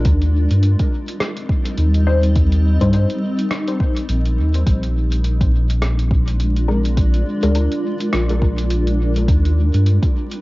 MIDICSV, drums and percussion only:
0, 0, Header, 1, 2, 480
1, 0, Start_track
1, 0, Tempo, 576923
1, 42, Time_signature, 4, 2, 24, 8
1, 8664, End_track
2, 0, Start_track
2, 0, Title_t, "Drums"
2, 39, Note_on_c, 9, 42, 47
2, 42, Note_on_c, 9, 36, 105
2, 122, Note_off_c, 9, 42, 0
2, 125, Note_off_c, 9, 36, 0
2, 178, Note_on_c, 9, 42, 25
2, 261, Note_off_c, 9, 42, 0
2, 419, Note_on_c, 9, 42, 37
2, 502, Note_off_c, 9, 42, 0
2, 520, Note_on_c, 9, 42, 49
2, 604, Note_off_c, 9, 42, 0
2, 658, Note_on_c, 9, 42, 26
2, 661, Note_on_c, 9, 36, 91
2, 742, Note_off_c, 9, 42, 0
2, 744, Note_off_c, 9, 36, 0
2, 900, Note_on_c, 9, 42, 38
2, 983, Note_off_c, 9, 42, 0
2, 1001, Note_on_c, 9, 37, 82
2, 1001, Note_on_c, 9, 42, 48
2, 1085, Note_off_c, 9, 37, 0
2, 1085, Note_off_c, 9, 42, 0
2, 1138, Note_on_c, 9, 42, 26
2, 1221, Note_off_c, 9, 42, 0
2, 1243, Note_on_c, 9, 36, 94
2, 1326, Note_off_c, 9, 36, 0
2, 1378, Note_on_c, 9, 42, 39
2, 1461, Note_off_c, 9, 42, 0
2, 1478, Note_on_c, 9, 42, 47
2, 1562, Note_off_c, 9, 42, 0
2, 1618, Note_on_c, 9, 42, 26
2, 1701, Note_off_c, 9, 42, 0
2, 1858, Note_on_c, 9, 42, 38
2, 1941, Note_off_c, 9, 42, 0
2, 1960, Note_on_c, 9, 42, 50
2, 1963, Note_on_c, 9, 36, 109
2, 2044, Note_off_c, 9, 42, 0
2, 2046, Note_off_c, 9, 36, 0
2, 2099, Note_on_c, 9, 42, 26
2, 2182, Note_off_c, 9, 42, 0
2, 2340, Note_on_c, 9, 42, 39
2, 2341, Note_on_c, 9, 36, 54
2, 2423, Note_off_c, 9, 42, 0
2, 2424, Note_off_c, 9, 36, 0
2, 2439, Note_on_c, 9, 42, 51
2, 2522, Note_off_c, 9, 42, 0
2, 2579, Note_on_c, 9, 42, 27
2, 2662, Note_off_c, 9, 42, 0
2, 2819, Note_on_c, 9, 42, 39
2, 2902, Note_off_c, 9, 42, 0
2, 2919, Note_on_c, 9, 37, 85
2, 2919, Note_on_c, 9, 42, 52
2, 3002, Note_off_c, 9, 37, 0
2, 3002, Note_off_c, 9, 42, 0
2, 3058, Note_on_c, 9, 42, 28
2, 3141, Note_off_c, 9, 42, 0
2, 3162, Note_on_c, 9, 36, 96
2, 3245, Note_off_c, 9, 36, 0
2, 3298, Note_on_c, 9, 42, 39
2, 3381, Note_off_c, 9, 42, 0
2, 3400, Note_on_c, 9, 42, 49
2, 3483, Note_off_c, 9, 42, 0
2, 3538, Note_on_c, 9, 42, 28
2, 3621, Note_off_c, 9, 42, 0
2, 3778, Note_on_c, 9, 42, 39
2, 3861, Note_off_c, 9, 42, 0
2, 3881, Note_on_c, 9, 36, 110
2, 3882, Note_on_c, 9, 42, 52
2, 3964, Note_off_c, 9, 36, 0
2, 3965, Note_off_c, 9, 42, 0
2, 4019, Note_on_c, 9, 42, 27
2, 4102, Note_off_c, 9, 42, 0
2, 4259, Note_on_c, 9, 42, 42
2, 4342, Note_off_c, 9, 42, 0
2, 4362, Note_on_c, 9, 42, 52
2, 4445, Note_off_c, 9, 42, 0
2, 4500, Note_on_c, 9, 36, 96
2, 4502, Note_on_c, 9, 42, 28
2, 4583, Note_off_c, 9, 36, 0
2, 4585, Note_off_c, 9, 42, 0
2, 4741, Note_on_c, 9, 42, 42
2, 4824, Note_off_c, 9, 42, 0
2, 4841, Note_on_c, 9, 37, 86
2, 4841, Note_on_c, 9, 42, 52
2, 4924, Note_off_c, 9, 37, 0
2, 4924, Note_off_c, 9, 42, 0
2, 4982, Note_on_c, 9, 42, 28
2, 5066, Note_off_c, 9, 42, 0
2, 5081, Note_on_c, 9, 36, 103
2, 5165, Note_off_c, 9, 36, 0
2, 5222, Note_on_c, 9, 42, 41
2, 5305, Note_off_c, 9, 42, 0
2, 5323, Note_on_c, 9, 42, 52
2, 5407, Note_off_c, 9, 42, 0
2, 5462, Note_on_c, 9, 42, 29
2, 5545, Note_off_c, 9, 42, 0
2, 5701, Note_on_c, 9, 42, 41
2, 5784, Note_off_c, 9, 42, 0
2, 5802, Note_on_c, 9, 36, 115
2, 5802, Note_on_c, 9, 42, 54
2, 5885, Note_off_c, 9, 36, 0
2, 5885, Note_off_c, 9, 42, 0
2, 5940, Note_on_c, 9, 42, 28
2, 6024, Note_off_c, 9, 42, 0
2, 6181, Note_on_c, 9, 42, 42
2, 6264, Note_off_c, 9, 42, 0
2, 6281, Note_on_c, 9, 42, 52
2, 6364, Note_off_c, 9, 42, 0
2, 6420, Note_on_c, 9, 42, 28
2, 6503, Note_off_c, 9, 42, 0
2, 6658, Note_on_c, 9, 42, 41
2, 6741, Note_off_c, 9, 42, 0
2, 6761, Note_on_c, 9, 37, 90
2, 6761, Note_on_c, 9, 42, 53
2, 6844, Note_off_c, 9, 37, 0
2, 6844, Note_off_c, 9, 42, 0
2, 6899, Note_on_c, 9, 42, 29
2, 6983, Note_off_c, 9, 42, 0
2, 7003, Note_on_c, 9, 36, 104
2, 7086, Note_off_c, 9, 36, 0
2, 7140, Note_on_c, 9, 42, 42
2, 7223, Note_off_c, 9, 42, 0
2, 7241, Note_on_c, 9, 42, 51
2, 7325, Note_off_c, 9, 42, 0
2, 7381, Note_on_c, 9, 42, 29
2, 7465, Note_off_c, 9, 42, 0
2, 7621, Note_on_c, 9, 42, 41
2, 7704, Note_off_c, 9, 42, 0
2, 7722, Note_on_c, 9, 36, 118
2, 7723, Note_on_c, 9, 42, 52
2, 7805, Note_off_c, 9, 36, 0
2, 7806, Note_off_c, 9, 42, 0
2, 7863, Note_on_c, 9, 42, 28
2, 7947, Note_off_c, 9, 42, 0
2, 8102, Note_on_c, 9, 42, 41
2, 8185, Note_off_c, 9, 42, 0
2, 8203, Note_on_c, 9, 42, 52
2, 8287, Note_off_c, 9, 42, 0
2, 8340, Note_on_c, 9, 36, 103
2, 8341, Note_on_c, 9, 42, 27
2, 8423, Note_off_c, 9, 36, 0
2, 8425, Note_off_c, 9, 42, 0
2, 8581, Note_on_c, 9, 42, 40
2, 8664, Note_off_c, 9, 42, 0
2, 8664, End_track
0, 0, End_of_file